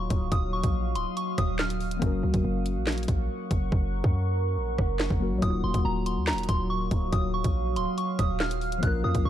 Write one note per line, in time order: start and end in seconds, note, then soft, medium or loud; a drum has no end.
0.00 1.96 F#3 medium
0.00 1.98 F#3 medium
0.00 1.97 A#3 medium
0.00 1.98 D#4 medium
0.00 1.99 F4 medium
0.00 2.00 F#4 medium
0.00 1.99 F5 medium
0.00 0.29 C#6 medium
0.00 1.98 D#6 medium
0.10 0.31 C#1 loud
0.10 kick loud
0.10 closed hi-hat medium
0.32 0.62 D#1 loud
0.32 0.51 D#6 medium
0.32 kick loud
0.32 closed hi-hat medium
0.53 0.93 C#6 medium
0.64 0.97 A#1 loud
0.64 kick loud
0.64 closed hi-hat medium
0.96 1.06 C#1 loud
0.96 1.15 C6 medium
0.96 closed hi-hat medium
1.17 1.36 C#6 medium
1.17 closed hi-hat medium
1.38 1.99 D#1 loud
1.38 1.57 D#6 medium
1.38 kick medium
1.38 cross-stick medium
1.38 closed hi-hat medium
1.59 1.99 F6 medium
1.59 snare loud
1.59 clap medium
1.70 closed hi-hat medium
1.80 open hi-hat medium
1.91 closed hi-hat medium
1.97 5.15 F#3 medium
1.97 5.16 A#3 medium
2.01 2.22 F#1 loud
2.01 5.17 C#4 medium
2.01 5.18 F#4 medium
2.01 5.39 A#4 medium
2.01 5.39 F#5 medium
2.01 5.39 C#6 medium
2.01 kick loud
2.01 closed hi-hat medium
2.06 5.19 A#4 medium
2.23 2.33 C#2 loud
2.34 2.44 F#1 loud
2.34 kick medium
2.34 closed hi-hat medium
2.44 2.78 F#1 loud
2.66 closed hi-hat medium
2.76 3.07 A#1 loud
2.87 snare loud
2.87 clap medium
2.87 closed hi-hat medium
2.92 closed hi-hat medium
2.98 closed hi-hat medium
3.03 closed hi-hat medium
3.08 3.29 A#1 loud
3.08 kick medium
3.08 closed hi-hat medium
3.51 3.71 F#1 loud
3.51 kick medium
3.51 closed hi-hat medium
3.72 4.03 F#1 loud
3.72 kick loud
4.04 4.59 F#2 loud
4.04 kick loud
4.57 4.77 A#1 loud
4.78 5.09 F#1 loud
4.78 kick medium
4.78 cross-stick medium
4.99 snare loud
4.99 clap medium
5.10 5.33 F#1 loud
5.10 kick medium
5.19 5.37 F#3 medium
5.19 5.39 A#3 soft
5.19 5.42 C#4 soft
5.19 5.43 F#4 soft
5.23 5.43 A#4 medium
5.32 5.42 A#1 loud
5.38 8.77 F#3 medium
5.38 8.78 A#3 medium
5.42 5.63 D#1 loud
5.42 8.79 F#3 medium
5.42 8.79 D#4 medium
5.42 8.80 F4 medium
5.42 9.30 F5 medium
5.42 8.79 D#6 medium
5.42 5.62 D#6 loud
5.42 kick loud
5.42 closed hi-hat medium
5.47 8.81 F#4 medium
5.64 5.74 D#1 loud
5.64 5.83 C6 medium
5.74 5.84 D#1 loud
5.74 kick medium
5.74 closed hi-hat medium
5.85 6.18 D#1 loud
5.85 6.04 A#5 medium
6.06 6.25 C6 medium
6.06 closed hi-hat medium
6.17 6.34 D#2 loud
6.27 6.47 A#5 medium
6.27 snare loud
6.27 clap medium
6.27 closed hi-hat medium
6.33 6.48 D#1 loud
6.33 closed hi-hat medium
6.38 closed hi-hat medium
6.43 closed hi-hat medium
6.49 6.90 D#1 loud
6.49 6.68 C6 medium
6.49 kick loud
6.49 closed hi-hat medium
6.70 7.10 C#6 medium
6.91 7.12 C#1 loud
6.91 kick medium
6.91 closed hi-hat medium
7.13 7.43 D#1 loud
7.13 7.32 D#6 medium
7.13 kick loud
7.13 closed hi-hat medium
7.34 7.74 C#6 medium
7.44 7.78 A#1 loud
7.44 kick medium
7.44 closed hi-hat medium
7.76 7.86 C#1 loud
7.76 7.96 C6 medium
7.76 closed hi-hat medium
7.98 8.17 C#6 medium
7.98 closed hi-hat medium
8.19 8.80 D#1 loud
8.19 8.38 D#6 medium
8.19 kick loud
8.19 cross-stick medium
8.19 closed hi-hat medium
8.40 8.80 F6 medium
8.40 snare loud
8.40 clap medium
8.51 closed hi-hat medium
8.61 open hi-hat medium
8.72 closed hi-hat medium
8.78 9.30 F3 medium
8.78 9.30 A#3 medium
8.83 9.03 A#1 loud
8.83 9.30 C#4 medium
8.83 9.30 F4 medium
8.83 9.30 A#4 medium
8.83 9.30 C#6 medium
8.83 9.02 F#6 medium
8.83 kick loud
8.83 closed hi-hat medium
8.87 9.30 A#4 medium
9.04 9.14 F2 loud
9.04 9.23 D#6 medium
9.15 9.25 A#1 loud
9.15 kick medium
9.15 closed hi-hat medium
9.25 9.30 A#1 loud
9.25 9.30 C#6 medium